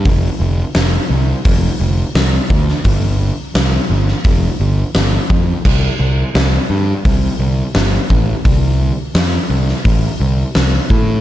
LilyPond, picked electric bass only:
\new Staff \with { instrumentName = "Picked electric bass" } { \clef bass \time 4/4 \key f \lydian \tempo 4 = 86 f,,8 f,,8 f,,8 c,8 f,,8 f,,8 c,8 d,8 | g,,4 c,8 g,,8 f,,8 g,,8 g,,8 f,8 | c,8 c,8 c,8 g,8 c,8 c,8 g,,8 a,,8 | c,4 f,8 c,8 a,,8 c,8 c,8 a,8 | }